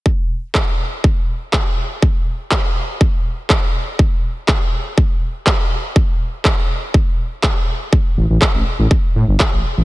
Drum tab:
CP |--x---x-|--x---x-|--x---x-|--x---x-|
BD |o-o-o-o-|o-o-o-o-|o-o-o-o-|o-o-o-o-|

CP |--x---x-|
BD |o-o-o-o-|